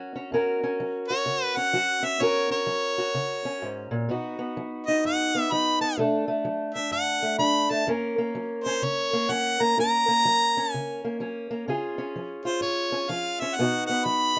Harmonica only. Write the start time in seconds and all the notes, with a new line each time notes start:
1.08 C#5
1.44 B4
1.57 F#5
2.04 E5
2.23 C#5
2.51 C#5
4.86 D#5
5.06 F#5
5.41 E5
5.52 B5
5.82 A5
6.74 E5
6.92 F#5
7.39 B5
7.70 A5
8.64 C5
8.84 C#5
9.31 F#5
9.62 A#5
9.80 A#5
10.72 G#5
12.46 C5
12.62 C#5
13.11 F5
13.40 E5
13.56 F#5
13.87 F#5
14.05 B5